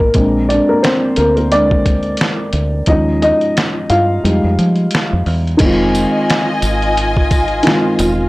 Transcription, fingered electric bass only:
0, 0, Header, 1, 2, 480
1, 0, Start_track
1, 0, Key_signature, -4, "minor"
1, 0, Tempo, 681818
1, 104, Time_signature, 4, 2, 24, 8
1, 5835, End_track
2, 0, Start_track
2, 0, Title_t, "Fingered electric bass"
2, 0, Program_c, 0, 33
2, 107, Note_on_c, 0, 34, 104
2, 417, Note_off_c, 0, 34, 0
2, 828, Note_on_c, 0, 38, 84
2, 1518, Note_off_c, 0, 38, 0
2, 1782, Note_on_c, 0, 38, 87
2, 1982, Note_off_c, 0, 38, 0
2, 2024, Note_on_c, 0, 39, 87
2, 2336, Note_off_c, 0, 39, 0
2, 2745, Note_on_c, 0, 43, 78
2, 2943, Note_off_c, 0, 43, 0
2, 2987, Note_on_c, 0, 41, 102
2, 3099, Note_off_c, 0, 41, 0
2, 3126, Note_on_c, 0, 41, 91
2, 3209, Note_off_c, 0, 41, 0
2, 3229, Note_on_c, 0, 53, 96
2, 3425, Note_off_c, 0, 53, 0
2, 3612, Note_on_c, 0, 41, 85
2, 3693, Note_off_c, 0, 41, 0
2, 3706, Note_on_c, 0, 40, 95
2, 3904, Note_off_c, 0, 40, 0
2, 3945, Note_on_c, 0, 29, 95
2, 4256, Note_off_c, 0, 29, 0
2, 4663, Note_on_c, 0, 32, 85
2, 5355, Note_off_c, 0, 32, 0
2, 5628, Note_on_c, 0, 28, 104
2, 5825, Note_off_c, 0, 28, 0
2, 5835, End_track
0, 0, End_of_file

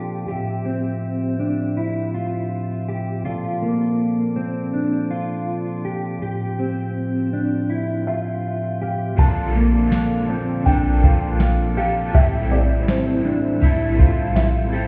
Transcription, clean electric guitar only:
0, 0, Header, 1, 2, 480
1, 0, Start_track
1, 0, Tempo, 740741
1, 187, Time_signature, 4, 2, 24, 8
1, 9638, End_track
2, 0, Start_track
2, 0, Title_t, "Clean electric guitar"
2, 0, Program_c, 0, 27
2, 0, Note_on_c, 0, 67, 65
2, 175, Note_off_c, 0, 67, 0
2, 182, Note_on_c, 0, 67, 80
2, 422, Note_on_c, 0, 60, 68
2, 425, Note_off_c, 0, 67, 0
2, 902, Note_off_c, 0, 60, 0
2, 904, Note_on_c, 0, 62, 65
2, 1146, Note_off_c, 0, 62, 0
2, 1147, Note_on_c, 0, 64, 65
2, 1387, Note_off_c, 0, 64, 0
2, 1389, Note_on_c, 0, 65, 67
2, 1866, Note_off_c, 0, 65, 0
2, 1869, Note_on_c, 0, 67, 66
2, 2103, Note_off_c, 0, 67, 0
2, 2106, Note_on_c, 0, 65, 76
2, 2346, Note_on_c, 0, 58, 67
2, 2347, Note_off_c, 0, 65, 0
2, 2825, Note_on_c, 0, 60, 67
2, 2827, Note_off_c, 0, 58, 0
2, 3065, Note_off_c, 0, 60, 0
2, 3068, Note_on_c, 0, 62, 63
2, 3307, Note_off_c, 0, 62, 0
2, 3308, Note_on_c, 0, 65, 65
2, 3786, Note_off_c, 0, 65, 0
2, 3789, Note_on_c, 0, 67, 62
2, 4024, Note_off_c, 0, 67, 0
2, 4032, Note_on_c, 0, 67, 79
2, 4269, Note_off_c, 0, 67, 0
2, 4271, Note_on_c, 0, 60, 71
2, 4748, Note_off_c, 0, 60, 0
2, 4750, Note_on_c, 0, 62, 69
2, 4987, Note_on_c, 0, 64, 70
2, 4989, Note_off_c, 0, 62, 0
2, 5227, Note_off_c, 0, 64, 0
2, 5234, Note_on_c, 0, 65, 63
2, 5710, Note_off_c, 0, 65, 0
2, 5713, Note_on_c, 0, 67, 64
2, 5950, Note_off_c, 0, 67, 0
2, 5953, Note_on_c, 0, 65, 90
2, 6190, Note_off_c, 0, 65, 0
2, 6193, Note_on_c, 0, 58, 79
2, 6670, Note_off_c, 0, 58, 0
2, 6671, Note_on_c, 0, 60, 76
2, 6905, Note_off_c, 0, 60, 0
2, 6908, Note_on_c, 0, 62, 81
2, 7148, Note_off_c, 0, 62, 0
2, 7151, Note_on_c, 0, 65, 72
2, 7626, Note_off_c, 0, 65, 0
2, 7629, Note_on_c, 0, 67, 81
2, 7860, Note_off_c, 0, 67, 0
2, 7868, Note_on_c, 0, 67, 97
2, 8107, Note_off_c, 0, 67, 0
2, 8107, Note_on_c, 0, 60, 81
2, 8585, Note_off_c, 0, 60, 0
2, 8587, Note_on_c, 0, 62, 81
2, 8827, Note_off_c, 0, 62, 0
2, 8829, Note_on_c, 0, 64, 83
2, 9063, Note_off_c, 0, 64, 0
2, 9066, Note_on_c, 0, 65, 82
2, 9541, Note_off_c, 0, 65, 0
2, 9543, Note_on_c, 0, 67, 75
2, 9638, Note_off_c, 0, 67, 0
2, 9638, End_track
0, 0, End_of_file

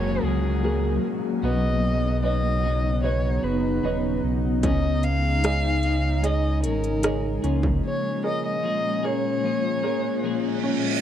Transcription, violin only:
0, 0, Header, 1, 2, 480
1, 0, Start_track
1, 0, Tempo, 800000
1, 860, Time_signature, 4, 2, 24, 8
1, 6607, End_track
2, 0, Start_track
2, 0, Title_t, "Violin"
2, 0, Program_c, 0, 40
2, 0, Note_on_c, 0, 73, 82
2, 146, Note_on_c, 0, 68, 67
2, 155, Note_off_c, 0, 73, 0
2, 623, Note_off_c, 0, 68, 0
2, 865, Note_on_c, 0, 75, 85
2, 1319, Note_off_c, 0, 75, 0
2, 1338, Note_on_c, 0, 75, 88
2, 1795, Note_off_c, 0, 75, 0
2, 1823, Note_on_c, 0, 73, 77
2, 2063, Note_on_c, 0, 71, 64
2, 2072, Note_off_c, 0, 73, 0
2, 2542, Note_off_c, 0, 71, 0
2, 2789, Note_on_c, 0, 75, 85
2, 3024, Note_on_c, 0, 77, 106
2, 3033, Note_off_c, 0, 75, 0
2, 3752, Note_on_c, 0, 75, 84
2, 3761, Note_off_c, 0, 77, 0
2, 3980, Note_off_c, 0, 75, 0
2, 3984, Note_on_c, 0, 70, 73
2, 4438, Note_off_c, 0, 70, 0
2, 4713, Note_on_c, 0, 73, 85
2, 4930, Note_off_c, 0, 73, 0
2, 4955, Note_on_c, 0, 75, 95
2, 5060, Note_off_c, 0, 75, 0
2, 5075, Note_on_c, 0, 75, 89
2, 5431, Note_on_c, 0, 73, 92
2, 5440, Note_off_c, 0, 75, 0
2, 6386, Note_off_c, 0, 73, 0
2, 6607, End_track
0, 0, End_of_file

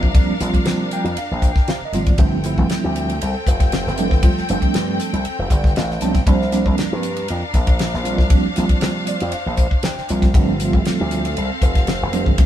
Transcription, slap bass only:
0, 0, Header, 1, 3, 480
1, 0, Start_track
1, 0, Tempo, 509771
1, 145, Time_signature, 4, 2, 24, 8
1, 11731, End_track
2, 0, Start_track
2, 0, Title_t, "Slap bass"
2, 0, Program_c, 0, 36
2, 30, Note_on_c, 0, 36, 66
2, 134, Note_off_c, 0, 36, 0
2, 378, Note_on_c, 0, 34, 79
2, 499, Note_off_c, 0, 34, 0
2, 616, Note_on_c, 0, 48, 81
2, 841, Note_off_c, 0, 48, 0
2, 981, Note_on_c, 0, 41, 80
2, 1089, Note_off_c, 0, 41, 0
2, 1236, Note_on_c, 0, 34, 70
2, 1455, Note_off_c, 0, 34, 0
2, 1583, Note_on_c, 0, 48, 85
2, 1702, Note_off_c, 0, 48, 0
2, 1811, Note_on_c, 0, 32, 78
2, 2038, Note_off_c, 0, 32, 0
2, 2056, Note_on_c, 0, 31, 89
2, 2398, Note_off_c, 0, 31, 0
2, 2427, Note_on_c, 0, 31, 79
2, 2532, Note_off_c, 0, 31, 0
2, 2674, Note_on_c, 0, 38, 88
2, 2996, Note_off_c, 0, 38, 0
2, 3033, Note_on_c, 0, 36, 85
2, 3147, Note_off_c, 0, 36, 0
2, 3270, Note_on_c, 0, 29, 68
2, 3605, Note_off_c, 0, 29, 0
2, 3642, Note_on_c, 0, 29, 74
2, 3874, Note_off_c, 0, 29, 0
2, 3874, Note_on_c, 0, 31, 65
2, 3976, Note_off_c, 0, 31, 0
2, 4234, Note_on_c, 0, 29, 78
2, 4347, Note_off_c, 0, 29, 0
2, 4469, Note_on_c, 0, 43, 78
2, 4687, Note_off_c, 0, 43, 0
2, 4831, Note_on_c, 0, 36, 78
2, 4934, Note_off_c, 0, 36, 0
2, 5072, Note_on_c, 0, 29, 62
2, 5174, Note_off_c, 0, 29, 0
2, 5184, Note_on_c, 0, 31, 69
2, 5399, Note_off_c, 0, 31, 0
2, 5430, Note_on_c, 0, 33, 80
2, 5643, Note_off_c, 0, 33, 0
2, 5666, Note_on_c, 0, 35, 76
2, 5880, Note_off_c, 0, 35, 0
2, 5903, Note_on_c, 0, 36, 90
2, 6241, Note_off_c, 0, 36, 0
2, 6270, Note_on_c, 0, 36, 69
2, 6373, Note_off_c, 0, 36, 0
2, 6521, Note_on_c, 0, 43, 83
2, 6840, Note_off_c, 0, 43, 0
2, 6875, Note_on_c, 0, 41, 75
2, 6987, Note_off_c, 0, 41, 0
2, 7102, Note_on_c, 0, 34, 74
2, 7441, Note_off_c, 0, 34, 0
2, 7477, Note_on_c, 0, 34, 73
2, 7707, Note_off_c, 0, 34, 0
2, 7707, Note_on_c, 0, 36, 65
2, 7812, Note_off_c, 0, 36, 0
2, 8074, Note_on_c, 0, 34, 82
2, 8180, Note_off_c, 0, 34, 0
2, 8314, Note_on_c, 0, 48, 84
2, 8529, Note_off_c, 0, 48, 0
2, 8676, Note_on_c, 0, 41, 77
2, 8776, Note_off_c, 0, 41, 0
2, 8908, Note_on_c, 0, 34, 74
2, 9130, Note_off_c, 0, 34, 0
2, 9258, Note_on_c, 0, 48, 86
2, 9377, Note_off_c, 0, 48, 0
2, 9510, Note_on_c, 0, 36, 68
2, 9727, Note_off_c, 0, 36, 0
2, 9741, Note_on_c, 0, 31, 80
2, 10080, Note_off_c, 0, 31, 0
2, 10107, Note_on_c, 0, 31, 69
2, 10211, Note_off_c, 0, 31, 0
2, 10362, Note_on_c, 0, 38, 93
2, 10680, Note_off_c, 0, 38, 0
2, 10711, Note_on_c, 0, 36, 80
2, 10825, Note_off_c, 0, 36, 0
2, 10942, Note_on_c, 0, 29, 71
2, 11280, Note_off_c, 0, 29, 0
2, 11321, Note_on_c, 0, 29, 74
2, 11547, Note_off_c, 0, 29, 0
2, 11547, Note_on_c, 0, 31, 71
2, 11651, Note_off_c, 0, 31, 0
2, 11731, End_track
3, 0, Start_track
3, 0, Title_t, "Muted slap bass strokes"
3, 265, Note_on_c, 9, 29, 34
3, 359, Note_off_c, 9, 29, 0
3, 1097, Note_on_c, 9, 29, 38
3, 1191, Note_off_c, 9, 29, 0
3, 1706, Note_on_c, 9, 29, 31
3, 1800, Note_off_c, 9, 29, 0
3, 2551, Note_on_c, 9, 29, 37
3, 2646, Note_off_c, 9, 29, 0
3, 4123, Note_on_c, 9, 29, 38
3, 4217, Note_off_c, 9, 29, 0
3, 4949, Note_on_c, 9, 29, 33
3, 5043, Note_off_c, 9, 29, 0
3, 6394, Note_on_c, 9, 29, 38
3, 6488, Note_off_c, 9, 29, 0
3, 7964, Note_on_c, 9, 29, 30
3, 8058, Note_off_c, 9, 29, 0
3, 8788, Note_on_c, 9, 29, 34
3, 8882, Note_off_c, 9, 29, 0
3, 9396, Note_on_c, 9, 29, 32
3, 9491, Note_off_c, 9, 29, 0
3, 10227, Note_on_c, 9, 29, 38
3, 10321, Note_off_c, 9, 29, 0
3, 11731, End_track
0, 0, End_of_file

